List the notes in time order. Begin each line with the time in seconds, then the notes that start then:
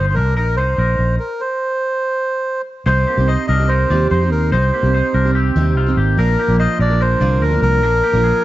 Already playing: G1 D#4 C5
0.09 C5
0.14 C2 D4 A#4
0.36 A#1 D#4 A#4
0.57 C2 D#4 C5
0.78 A#1 D#4 A#4
0.99 A#1
1.20 A#4
1.41 C5
2.86 C2 G3 C4 D#4 G4 C5
3.07 A#3 G4
3.17 C2 C4 D#4 G4
3.28 D#4 C5 D#5
3.48 C2 D4 A#4 D#5
3.59 C4 D#4 G4
3.68 D#4 A#4 C5
3.90 D#2 C3 G3 C4 D#4 F4 G4 D5
4.11 F2 D#4 C5
4.21 C4 D#4 G4
4.31 D#2 A#4
4.52 C2 G3 C4 D#4 G4 C5
4.74 A#3 G4
4.83 C2 C4 D#4 G4
4.94 D#4 C5
5.14 C2 D4 A#4
5.25 C4 D#4 G4
5.35 C4 G4
5.56 D#2 C3 G3 C4 D#4 G4
5.76 C2 C4 F4
5.86 C4 D#4 G4
5.97 G#1 A#3 G4
6.17 A#1 F3 A#3 D4 A#4
6.39 A#3 G4
6.48 A#1 F3 A#3 D4 A#4
6.59 F4 C5 D#5
6.79 A#1 D4 A#4 D5
6.90 F3 A#3 D4 A#4
7.00 D4 A#4 C5
7.20 C2 A#2 D3 F3 A#3 D4 F4 A#4 D5
7.42 D2 D4 A#4
7.51 F3 A#3 D4 A#4
7.62 C2 A#4
7.82 A#1 F3 A#3 D4 A#4
8.03 A#3 G4
8.13 A#1 F3 A#3 D4 A#4
8.24 D4 G#4